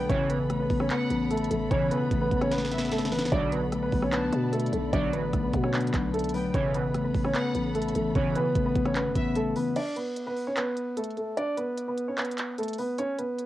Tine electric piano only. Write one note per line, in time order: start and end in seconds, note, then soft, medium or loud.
0.00 0.11 D3 medium
0.00 0.12 F#3 medium
0.00 0.12 A3 medium
0.00 0.12 B3 loud
0.00 0.12 D4 medium
0.11 1.11 C#3 medium
0.50 1.51 A3 medium
0.71 1.10 B3 medium
0.91 1.91 C#4 medium
1.11 2.11 B3 medium
1.51 2.52 E3 medium
1.71 2.72 C#3 medium
2.12 3.12 A3 medium
2.31 2.70 B3 loud
2.51 3.32 C#4 medium
2.71 3.32 B3 medium
3.12 3.32 E3 medium
3.31 4.32 D3 medium
3.73 4.73 A3 medium
3.92 4.31 B3 loud
4.12 5.13 D4 medium
4.33 5.33 B3 medium
4.73 5.73 F#3 medium
4.92 5.93 D3 medium
5.33 6.34 A3 medium
5.53 5.93 B3 loud
5.73 6.54 D4 medium
5.94 6.54 B3 medium
6.34 6.54 F#3 medium
6.55 7.55 C#3 medium
6.95 7.95 A3 medium
7.15 7.54 B3 medium
7.35 8.35 C#4 medium
7.55 8.56 B3 medium
7.95 8.96 E3 medium
8.15 9.16 C#3 medium
8.56 9.57 A3 medium
8.76 9.14 B3 loud
8.95 9.76 C#4 medium
9.16 9.76 B3 medium
9.56 9.76 E3 medium